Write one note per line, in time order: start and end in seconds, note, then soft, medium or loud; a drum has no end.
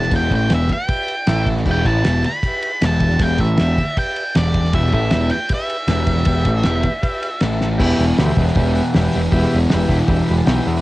0.00 0.11 E2 medium
0.00 0.11 B2 medium
0.00 0.12 E3 loud
0.00 0.11 A5 loud
0.00 snare soft
0.11 0.29 E1 loud
0.11 0.30 E2 loud
0.11 0.30 B2 loud
0.11 0.30 E3 loud
0.11 0.39 G4 medium
0.11 0.39 B4 medium
0.11 0.40 E5 medium
0.11 kick loud
0.11 ride loud
0.16 0.32 G5 loud
0.31 0.49 A1 medium
0.31 0.50 A2 medium
0.31 0.50 E3 loud
0.31 0.50 A3 loud
0.31 kick medium
0.31 ride medium
0.35 0.53 G5 loud
0.50 0.68 E1 medium
0.50 0.69 E2 medium
0.50 0.69 B2 medium
0.50 0.69 E3 medium
0.50 0.77 G4 medium
0.50 0.77 B4 medium
0.50 0.78 E5 medium
0.50 snare loud
0.50 ride loud
0.55 0.72 E5 loud
0.69 1.48 G5 loud
0.69 kick medium
0.69 ride medium
0.87 1.15 G4 medium
0.87 1.15 B4 medium
0.87 1.16 E5 medium
0.87 kick loud
0.87 ride medium
1.08 ride medium
1.27 1.63 A1 loud
1.27 1.65 A2 medium
1.27 1.65 E3 loud
1.27 1.65 A3 medium
1.27 1.55 E4 medium
1.27 1.55 A4 medium
1.27 1.55 E5 loud
1.27 snare loud
1.27 ride loud
1.46 kick medium
1.46 ride medium
1.57 snare soft
1.65 1.84 E1 loud
1.65 1.85 E2 medium
1.65 1.85 B2 loud
1.65 1.85 E3 loud
1.65 1.92 G4 medium
1.65 1.93 B4 medium
1.65 1.93 E5 medium
1.65 kick loud
1.65 crash loud
1.71 1.86 G5 loud
1.85 2.03 A1 loud
1.85 2.04 A2 loud
1.85 2.04 E3 loud
1.85 2.04 A3 loud
1.85 2.21 A5 medium
1.85 kick medium
1.85 ride medium
2.04 2.23 E1 loud
2.04 2.23 E2 medium
2.04 2.23 B2 medium
2.04 2.23 E3 loud
2.04 2.31 G4 medium
2.04 2.32 B4 medium
2.04 2.32 E5 medium
2.04 snare loud
2.04 ride medium
2.24 2.84 B5 loud
2.24 ride medium
2.43 2.71 G4 medium
2.43 kick loud
2.43 ride loud
2.47 2.72 B4 medium
2.47 2.72 E5 medium
2.63 ride medium
2.82 3.18 E1 loud
2.82 3.19 E2 medium
2.82 3.20 B2 medium
2.82 3.20 E3 loud
2.82 3.09 G4 medium
2.82 3.10 B4 medium
2.82 3.10 E5 medium
2.82 snare loud
2.82 ride loud
2.86 3.23 A5 loud
3.00 kick medium
3.00 ride medium
3.10 snare soft
3.19 3.38 E1 loud
3.19 3.39 E2 loud
3.19 3.39 B2 loud
3.19 3.39 E3 loud
3.19 3.47 G4 medium
3.19 3.48 B4 medium
3.19 3.48 E5 medium
3.19 3.40 G5 medium
3.19 kick loud
3.19 ride loud
3.38 3.57 A1 medium
3.38 3.58 A2 medium
3.38 3.58 E3 loud
3.38 3.59 A3 loud
3.38 3.98 E5 medium
3.38 kick medium
3.38 ride medium
3.57 3.77 E1 medium
3.57 3.77 E2 medium
3.57 3.77 B2 loud
3.57 3.77 E3 loud
3.57 3.86 G4 medium
3.57 3.86 B4 medium
3.57 3.86 E5 medium
3.57 snare loud
3.57 ride loud
3.78 kick medium
3.78 ride medium
3.97 4.24 G4 medium
3.97 4.24 B4 medium
3.97 4.24 E5 medium
3.97 4.34 G5 loud
3.97 kick loud
3.97 ride medium
4.16 ride medium
4.35 4.72 E1 loud
4.35 4.73 E2 medium
4.35 4.73 B2 loud
4.35 4.74 E3 loud
4.35 4.62 G4 medium
4.35 4.62 B4 medium
4.35 4.72 D5 medium
4.35 4.63 E5 medium
4.35 snare loud
4.35 ride medium
4.54 kick medium
4.54 ride medium
4.65 snare soft
4.72 4.92 E1 medium
4.72 4.93 E2 medium
4.72 4.92 B2 loud
4.72 4.91 E3 loud
4.72 5.00 G4 medium
4.72 5.00 B4 medium
4.72 5.01 E5 medium
4.72 4.93 E5 loud
4.72 kick loud
4.72 ride loud
4.92 5.11 A1 loud
4.92 5.11 A2 loud
4.92 5.11 E3 loud
4.92 5.12 A3 loud
4.92 5.30 E5 medium
4.92 kick medium
4.92 ride medium
5.11 5.30 E1 medium
5.11 5.31 E2 medium
5.11 5.31 B2 loud
5.11 5.31 E3 loud
5.11 5.39 G4 medium
5.11 5.39 B4 medium
5.11 5.40 E5 medium
5.11 snare loud
5.11 ride medium
5.29 5.51 G5 medium
5.29 ride medium
5.49 5.77 G4 medium
5.49 5.77 B4 medium
5.49 5.78 E5 medium
5.49 kick loud
5.49 ride loud
5.54 7.40 E5 medium
5.69 ride medium
5.87 6.24 E1 loud
5.87 6.26 E2 medium
5.87 6.26 B2 loud
5.87 6.15 G4 medium
5.87 6.15 B4 medium
5.87 6.15 E5 medium
5.87 snare loud
5.87 ride loud
5.91 6.27 E3 loud
6.07 kick medium
6.07 ride medium
6.17 snare soft
6.25 6.45 E1 medium
6.25 6.46 E2 loud
6.25 6.46 B2 loud
6.25 6.46 E3 loud
6.25 6.54 G4 medium
6.25 6.54 B4 medium
6.25 6.55 E5 loud
6.25 kick loud
6.25 ride loud
6.45 6.64 A1 loud
6.45 6.65 A2 medium
6.45 6.65 E3 loud
6.45 6.66 A3 loud
6.45 kick medium
6.45 ride medium
6.63 6.83 E1 medium
6.63 6.84 E2 medium
6.63 6.84 B2 medium
6.63 6.85 E3 loud
6.63 6.93 G4 medium
6.63 snare loud
6.63 ride medium
6.68 6.94 B4 medium
6.68 6.94 E5 loud
6.83 kick medium
6.83 ride medium
7.02 7.30 G4 medium
7.02 7.30 B4 medium
7.02 7.31 E5 medium
7.02 kick loud
7.02 ride medium
7.23 ride medium
7.41 7.78 A1 loud
7.41 7.80 A2 loud
7.41 7.80 E3 medium
7.41 7.81 A3 loud
7.41 7.68 E4 medium
7.41 7.69 A4 medium
7.41 7.70 E5 medium
7.41 snare loud
7.41 ride loud
7.61 snare medium
7.78 7.92 E1 loud
7.78 8.18 E2 medium
7.78 8.17 B2 loud
7.78 8.19 E3 loud
7.78 8.06 G4 loud
7.78 8.06 B4 loud
7.78 8.06 E5 loud
7.78 kick loud
7.78 crash loud
7.99 8.11 E1 medium
7.99 open hi-hat medium
8.18 8.31 D2 loud
8.18 8.39 E2 medium
8.18 8.38 B2 loud
8.18 8.39 E3 medium
8.18 8.45 G4 medium
8.18 8.45 B4 medium
8.18 8.46 E5 loud
8.18 snare loud
8.18 open hi-hat medium
8.36 8.49 E1 medium
8.36 8.55 E2 medium
8.36 8.56 B2 medium
8.36 8.57 E3 medium
8.36 kick medium
8.36 open hi-hat medium
8.48 snare soft
8.55 8.80 E1 medium
8.55 8.93 E2 medium
8.55 8.94 B2 loud
8.55 8.95 E3 loud
8.55 8.83 G4 medium
8.55 8.83 B4 medium
8.55 8.84 E5 medium
8.55 kick loud
8.55 open hi-hat medium
8.75 open hi-hat medium
8.94 9.08 E1 loud
8.94 9.14 E2 medium
8.94 9.14 B2 loud
8.94 9.15 E3 loud
8.94 9.21 G4 medium
8.94 9.21 B4 medium
8.94 9.22 E5 medium
8.94 snare loud
8.94 open hi-hat medium
9.13 9.27 E1 loud
9.13 9.31 E2 loud
9.13 9.32 B2 loud
9.13 9.32 E3 loud
9.13 open hi-hat medium
9.31 9.45 E1 loud
9.31 9.70 E2 loud
9.31 9.70 B2 loud
9.31 9.71 E3 loud
9.31 9.59 G4 loud
9.31 9.59 B4 loud
9.31 9.59 E5 loud
9.31 kick loud
9.31 open hi-hat loud
9.43 snare soft
9.52 9.66 E1 loud
9.52 open hi-hat medium
9.70 9.85 E1 loud
9.70 9.88 E2 medium
9.70 9.89 B2 medium
9.70 9.89 E3 medium
9.70 9.98 G4 medium
9.70 9.99 B4 medium
9.70 snare loud
9.70 open hi-hat medium
9.74 9.99 E5 loud
9.89 10.01 E1 medium
9.89 10.09 E2 medium
9.89 10.09 B2 medium
9.89 10.09 E3 medium
9.89 kick medium
9.89 open hi-hat medium
10.07 10.20 E1 loud
10.07 10.44 E2 loud
10.07 10.45 B2 medium
10.07 10.46 E3 loud
10.07 10.34 G4 medium
10.07 10.35 B4 medium
10.07 10.35 E5 loud
10.07 kick loud
10.07 open hi-hat medium
10.27 10.41 E1 loud
10.27 10.36 B5 medium
10.27 open hi-hat medium
10.37 10.46 A5 medium
10.45 10.59 B1 loud
10.45 10.65 E2 medium
10.45 10.65 B2 loud
10.45 10.66 E3 loud
10.45 10.72 G4 medium
10.45 10.73 B4 medium
10.45 10.64 E5 medium
10.45 10.64 G5 medium
10.45 snare loud
10.45 open hi-hat loud
10.65 10.81 E2 loud
10.65 10.78 E2 loud
10.65 10.81 B2 loud
10.65 10.81 E3 loud
10.65 10.81 E5 medium
10.65 open hi-hat medium